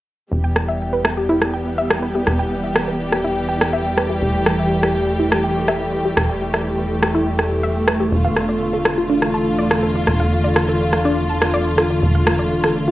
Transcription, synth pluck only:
0.44 0.53 G5 medium
0.68 0.77 E5 medium
0.93 1.04 B4 medium
1.17 1.29 G4 medium
1.29 1.35 E4 loud
1.54 1.63 G5 medium
1.78 1.87 E5 loud
2.02 2.11 B4 medium
2.15 2.26 G4 medium
2.39 2.48 G5 medium
2.64 2.72 E5 medium
2.88 2.99 B4 medium
3.12 3.24 G4 medium
3.24 3.30 E4 loud
3.49 3.58 G5 medium
3.73 3.82 E5 loud
3.97 4.07 B4 medium
4.10 4.21 G4 medium
4.34 4.43 G5 medium
4.59 4.68 E5 medium
4.83 4.95 B4 medium
5.08 5.19 G4 medium
5.20 5.25 E4 loud
5.44 5.53 G5 medium
5.68 5.77 E5 loud
5.93 6.02 B4 medium
6.05 6.16 G4 medium
6.29 6.38 G5 medium
6.54 6.63 E5 medium
6.78 6.90 B4 medium
7.03 7.14 G4 medium
7.15 7.20 E4 loud
7.39 7.48 G5 medium
7.63 7.72 E5 loud
7.88 7.97 B4 medium
8.00 8.12 G4 medium
8.25 8.33 F5 medium
8.49 8.58 D5 medium
8.73 8.85 A4 medium
8.98 9.09 F4 medium
9.10 9.15 D4 loud
9.34 9.43 A5 medium
9.58 9.68 D5 loud
9.83 9.92 A4 medium
9.95 10.07 F4 medium
10.20 10.28 F5 medium
10.44 10.53 D5 medium
10.69 10.80 A4 medium
10.93 11.04 F4 medium
11.05 11.10 D4 loud
11.29 11.38 A5 medium
11.54 11.63 D5 loud
11.78 11.87 A4 medium
11.90 12.02 F4 medium
12.15 12.24 F5 medium
12.39 12.48 D5 medium
12.64 12.75 A4 medium
12.88 12.91 F4 medium

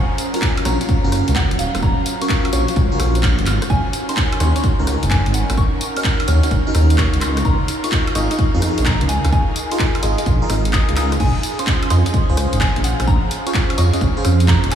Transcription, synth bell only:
0.00 0.17 F#5 loud
0.34 0.55 A#5 medium
0.65 0.87 A#5 medium
1.36 1.53 F#5 medium
1.59 1.76 F5 medium
1.82 2.05 A#5 loud
2.22 2.42 C#6 medium
2.53 2.75 C#6 medium
3.23 3.40 F6 medium
3.46 3.64 F6 medium
3.70 3.92 G#5 loud
4.09 4.30 C6 medium
4.40 4.62 C6 medium
5.11 5.28 G#5 medium
5.34 5.51 F#5 medium
5.58 5.80 C#6 loud
5.97 6.18 F6 medium
6.28 6.50 F6 medium
6.98 7.15 C#6 medium
7.21 7.39 C6 medium
7.45 7.67 A#5 loud
7.84 8.05 C#6 loud
8.15 8.38 C#6 medium
8.86 9.03 A#5 medium
9.09 9.26 G#5 medium
9.33 9.55 G#5 loud
9.72 9.92 C6 medium
10.03 10.25 C6 medium
10.73 10.90 D#6 medium
10.96 11.14 D#6 medium
11.20 11.42 G#5 loud
11.59 11.80 C6 medium
11.90 12.13 C6 medium
12.61 12.78 G#5 medium
12.84 13.02 F#5 medium
13.07 13.30 A#5 loud
13.46 13.67 C#6 medium
13.78 14.00 C#6 loud
14.48 14.65 A#5 medium
14.72 14.75 G#5 medium

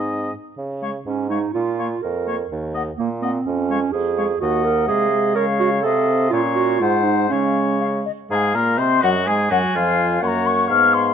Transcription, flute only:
0.00 0.32 G#5 soft
0.82 0.88 F5 soft
1.31 1.37 F5 soft
1.79 1.85 F5 soft
2.28 2.34 F5 soft
2.76 2.82 F#5 soft
3.23 3.29 F#5 soft
3.71 3.77 F5 soft
4.17 4.23 F5 soft
4.41 4.91 F#5 soft
4.90 5.36 F5 medium
5.37 5.83 F5 soft
5.83 6.30 F5 medium
6.33 6.83 F5 medium
6.81 7.32 F#5 medium
7.31 7.58 F5 soft
7.80 7.86 F5 medium
8.05 8.11 D#5 soft
8.31 8.56 G#5 medium
8.31 8.36 A#5 medium
8.55 8.81 A#5 medium
8.79 9.03 C6 medium
9.03 9.09 F#5 medium
9.28 9.34 G#5 medium
9.52 9.58 F#5 medium
9.76 10.25 F5 medium
10.24 10.48 A#5 medium
10.24 10.28 C6 medium
10.46 10.69 C#6 medium
10.69 10.95 F6 medium
10.93 11.14 C6 medium

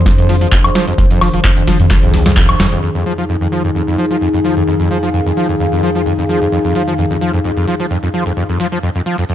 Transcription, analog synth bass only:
0.00 0.46 F2 loud
0.98 1.07 F1 loud
1.21 1.30 F1 medium
1.34 1.41 F1 medium
1.80 1.90 F2 loud
1.91 1.99 G#1 medium
2.03 2.54 C2 medium
2.60 2.76 F1 medium

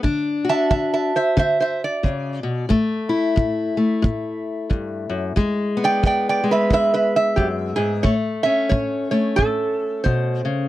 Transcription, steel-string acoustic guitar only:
0.03 0.65 D3 medium
0.03 1.11 D4 medium
0.45 2.68 F#4 medium
0.71 1.32 D3 medium
1.37 1.99 D3 medium
2.03 2.43 C#3 medium
2.43 2.68 B2 medium
2.69 3.31 A2 medium
2.69 3.76 A3 medium
3.09 8.03 E4 medium
3.36 3.98 A2 medium
3.77 5.34 A3 medium
4.02 4.64 A2 medium
4.70 5.09 G2 medium
5.10 5.36 F#2 medium
5.36 5.98 E2 medium
5.36 6.42 G#3 medium
5.77 8.04 B3 medium
6.03 6.65 E2 medium
6.44 8.01 G#3 medium
6.70 7.32 E2 medium
7.37 7.76 F#2 medium
7.77 8.04 G#2 medium
8.03 8.65 A2 medium
8.03 9.11 A3 medium
8.45 10.68 C#4 medium
8.70 9.33 A2 medium
9.11 10.68 A3 soft
9.38 10.00 A2 medium
10.05 10.44 B2 medium
10.45 10.68 C#3 medium

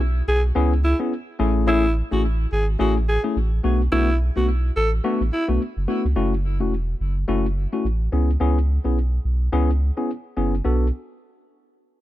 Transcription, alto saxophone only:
0.28 0.42 G#4 medium
0.84 0.98 E4 medium
1.68 1.92 E4 loud
2.13 2.22 F#4 medium
2.53 2.66 G#4 medium
2.80 2.94 F#4 medium
3.08 3.22 G#4 medium
3.92 4.16 E4 loud
4.37 4.46 F#4 medium
4.77 4.90 A4 medium
5.33 5.46 E4 medium

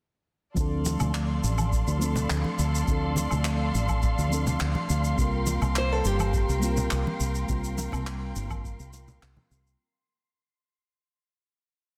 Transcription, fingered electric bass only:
0.57 0.96 D2 medium
1.01 1.39 D2 medium
1.44 1.82 A1 medium
1.87 2.25 D2 medium
2.30 2.42 D2 medium
2.59 2.82 D2 medium
2.88 3.27 D2 medium
3.32 3.70 D2 medium
3.75 4.13 A1 medium
4.18 4.56 D2 medium
4.61 4.73 D2 medium
4.90 5.13 D2 medium
5.18 5.57 C2 medium
5.62 6.00 C2 medium
6.05 6.44 G1 medium
6.49 6.87 C2 medium
6.92 7.04 C2 medium
7.20 7.44 C2 medium
7.49 7.88 C2 medium
7.93 8.31 C2 medium
8.36 8.75 G1 medium
8.80 9.18 C2 medium
9.22 9.34 C2 medium
9.51 9.74 C2 loud

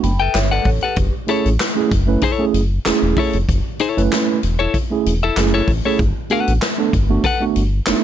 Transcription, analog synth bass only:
0.03 0.28 F#1 medium
0.34 0.60 G1 medium
0.65 0.79 A1 medium
0.97 1.11 F#1 loud
1.45 1.57 A1 medium
1.92 2.17 F#1 loud
2.53 2.79 F#1 medium
2.86 2.92 E1 soft
3.02 3.14 E1 medium
3.34 3.46 F1 medium
3.48 3.62 F#1 loud
3.97 4.09 F#1 medium
4.43 4.68 E1 medium
5.06 5.31 E1 medium
5.36 5.61 F#1 medium
5.68 5.81 A1 loud
5.99 6.13 G1 loud
6.48 6.59 A1 medium
6.94 7.18 G1 medium
7.56 7.81 G1 medium
7.87 7.94 F#1 soft

